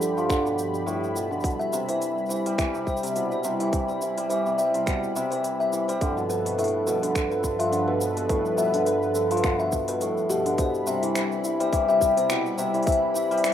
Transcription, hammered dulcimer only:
0.01 0.28 D3 medium
0.17 0.35 F3 medium
0.30 0.49 D3 medium
0.45 0.92 B2 medium
0.74 1.35 G3 medium
0.86 1.20 A2 loud
1.15 1.35 B2 medium
1.31 1.49 D3 medium
1.44 1.77 B2 medium
1.73 2.73 C3 medium
1.89 2.29 E3 medium
2.30 2.57 E3 medium
2.46 4.16 G3 loud
2.58 2.77 E3 medium
2.74 3.02 C3 medium
3.03 3.20 C3 medium
3.16 3.49 B2 medium
3.44 4.45 C3 medium
3.60 4.00 E3 medium
4.01 4.29 E3 medium
4.18 5.88 G3 loud
4.30 4.49 E3 medium
4.46 4.73 C3 medium
4.74 4.92 C3 medium
4.87 5.20 B2 medium
5.16 6.06 C3 loud
5.32 5.71 E3 medium
5.72 6.06 E3 medium
5.89 6.06 G3 loud
6.01 6.20 D3 medium
6.17 6.44 B2 medium
6.45 6.63 B2 medium
6.58 6.92 A2 medium
6.87 7.06 B2 medium
7.02 7.42 D3 medium
7.43 7.70 D3 medium
7.59 7.77 F3 medium
7.72 7.92 D3 medium
7.88 8.15 B2 medium
8.16 8.35 B2 medium
8.29 8.63 A2 medium
8.57 8.77 B2 medium
8.73 9.14 D3 medium
9.15 9.42 D3 medium
9.31 9.49 F3 medium
9.43 9.63 D3 medium
9.60 9.87 B2 medium
9.88 10.06 B2 medium
10.01 10.35 A2 medium
10.29 10.49 B2 medium
10.46 10.63 D3 medium
10.58 10.92 B2 medium
10.87 11.87 C3 medium
11.03 11.43 E3 medium
11.44 11.71 E3 medium
11.60 13.30 G3 loud
11.72 11.92 E3 medium
11.89 12.16 C3 medium
12.17 12.35 C3 medium
12.30 12.63 B2 medium
12.58 13.54 C3 medium
12.74 13.14 E3 medium
13.15 13.43 E3 medium
13.31 13.54 G3 loud
13.44 13.54 E3 medium

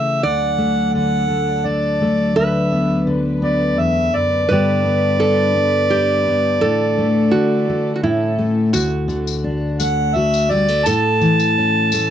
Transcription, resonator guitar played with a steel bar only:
0.23 2.42 D5 medium
2.36 4.47 B4 medium
4.49 5.19 B4 medium
5.20 5.87 A4 medium
5.90 6.63 G4 medium
6.61 7.28 A4 medium
7.31 7.94 F#4 medium
7.96 8.03 F#4 medium
8.03 8.70 E4 medium
8.73 10.82 F#4 medium
10.86 12.10 A4 medium

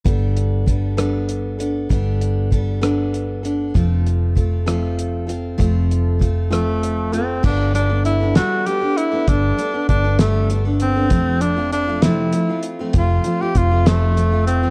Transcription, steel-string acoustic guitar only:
0.04 0.65 G3 medium
0.04 0.66 B3 medium
0.04 0.65 D4 medium
0.04 0.68 A4 medium
0.66 0.97 G3 soft
0.66 0.96 B3 soft
0.66 0.97 D4 soft
0.66 0.96 A4 medium
0.97 1.59 G3 soft
0.97 1.58 B3 medium
0.97 1.59 D4 soft
0.97 1.58 A4 medium
1.59 1.89 B3 soft
1.59 1.89 D4 soft
1.59 1.89 A4 soft
1.89 2.49 G3 medium
1.89 2.51 B3 medium
1.89 2.51 D4 medium
1.89 2.52 A4 medium
2.51 2.82 G3 soft
2.51 2.80 B3 medium
2.51 2.81 D4 medium
2.51 2.80 A4 medium
2.81 3.44 G3 soft
2.81 3.43 B3 medium
2.81 3.44 D4 medium
2.81 3.43 A4 medium
3.43 3.75 B3 soft
3.43 3.75 D4 soft
3.43 3.74 A4 soft
3.74 4.36 F3 medium
3.74 4.35 A3 medium
3.74 4.35 C4 medium
3.74 4.36 F4 medium
3.74 4.37 A4 medium
4.35 4.66 A3 soft
4.35 4.66 C4 medium
4.35 4.65 F4 medium
4.35 4.65 A4 medium
4.66 5.29 F3 soft
4.66 5.57 A3 medium
4.66 5.28 C4 medium
4.66 5.27 F4 medium
4.66 5.26 A4 medium
5.27 5.57 C4 soft
5.27 5.57 F4 soft
5.27 5.58 A4 medium
5.58 6.20 F3 medium
5.58 6.18 A3 medium
5.58 6.19 C4 medium
5.58 6.20 F4 medium
5.58 6.20 A4 medium
6.19 6.50 A3 medium
6.19 6.50 C4 soft
6.19 6.49 F4 medium
6.19 6.49 A4 medium
6.50 7.13 F3 medium
6.50 7.13 A3 medium
6.50 7.12 C4 medium
6.50 7.12 F4 medium
6.50 7.11 A4 medium
7.12 7.43 C4 soft
7.12 7.43 F4 soft
7.12 7.43 A4 medium
7.43 7.72 G3 medium
7.43 7.74 B3 medium
7.43 7.73 D4 medium
7.43 7.74 A4 medium
7.74 7.89 G3 medium
7.74 7.90 B3 soft
7.74 7.88 A4 medium
7.89 8.20 B3 soft
7.89 8.21 D4 soft
7.89 8.19 A4 soft
8.20 8.35 B3 soft
8.20 8.35 D4 soft
8.20 8.35 A4 soft
8.35 8.65 G3 medium
8.35 8.67 B3 medium
8.35 8.65 D4 medium
8.35 8.66 A4 medium
8.66 8.81 G3 soft
8.66 8.81 B3 medium
8.66 8.81 D4 medium
8.66 8.80 A4 medium
8.81 9.12 B3 soft
8.81 9.13 D4 soft
8.81 9.10 A4 soft
9.12 9.27 B3 soft
9.12 9.27 D4 soft
9.12 9.27 A4 soft
9.28 9.56 G3 medium
9.28 9.58 B3 medium
9.28 9.57 D4 medium
9.28 9.58 A4 medium
9.57 9.73 G3 medium
9.57 9.73 B3 soft
9.57 9.73 D4 medium
9.57 9.73 A4 medium
9.74 10.04 B3 soft
9.74 10.05 D4 soft
9.74 10.03 A4 soft
10.04 10.20 B3 soft
10.04 10.19 D4 soft
10.04 10.19 A4 soft
10.20 10.48 G3 medium
10.20 10.50 B3 medium
10.20 10.49 D4 medium
10.20 10.50 A4 medium
10.49 10.65 G3 soft
10.49 10.65 B3 medium
10.49 10.65 D4 medium
10.49 10.64 A4 medium
10.65 10.96 B3 soft
10.65 10.97 D4 soft
10.65 10.95 A4 soft
10.96 11.11 B3 soft
10.96 11.10 D4 soft
10.96 11.11 A4 soft
11.10 11.41 F2 medium
11.10 11.41 C3 medium
11.10 11.39 F3 medium
11.10 11.40 A3 medium
11.10 11.41 C4 medium
11.10 11.41 F4 medium
11.40 11.56 F3 medium
11.40 11.57 A3 medium
11.40 11.56 C4 medium
11.40 11.55 F4 medium
11.56 11.88 F3 soft
11.56 11.88 A3 soft
11.56 11.88 C4 medium
11.56 11.86 F4 soft
11.88 12.03 F3 soft
11.88 12.03 A3 soft
11.88 12.03 C4 soft
11.88 12.03 F4 soft
12.04 12.34 F2 medium
12.04 12.34 C3 medium
12.04 12.32 F3 medium
12.04 12.32 A3 medium
12.04 12.33 C4 medium
12.33 12.48 F3 medium
12.33 12.48 A3 medium
12.33 12.49 C4 medium
12.33 12.48 F4 medium
12.49 12.80 F3 soft
12.49 12.79 A3 soft
12.49 12.79 C4 soft
12.49 12.78 F4 soft
12.79 12.93 F3 soft
12.79 12.93 A3 soft
12.79 12.94 C4 soft
12.79 12.94 F4 soft
12.94 13.25 F2 medium
12.94 13.25 C3 medium
12.94 13.24 F3 medium
12.94 13.25 A3 medium
12.94 13.25 C4 medium
12.94 13.25 F4 medium
13.25 13.40 F3 soft
13.25 13.40 A3 medium
13.25 13.41 C4 medium
13.25 13.40 F4 medium
13.41 13.72 F3 soft
13.41 13.71 A3 soft
13.41 13.70 C4 soft
13.41 13.70 F4 soft
13.71 13.86 F3 soft
13.71 13.86 A3 soft
13.71 13.86 C4 soft
13.71 13.86 F4 medium
13.86 14.16 F2 medium
13.86 14.16 C3 medium
13.86 14.15 F3 medium
13.86 14.16 A3 medium
13.86 14.17 C4 medium
13.86 14.17 F4 medium
14.17 14.31 F3 soft
14.17 14.32 A3 soft
14.17 14.31 C4 soft
14.17 14.31 F4 medium
14.32 14.63 F3 soft
14.32 14.62 A3 soft
14.32 14.62 C4 soft
14.32 14.61 F4 soft
14.63 14.70 F3 soft
14.63 14.70 A3 soft
14.63 14.70 C4 soft
14.63 14.70 F4 soft

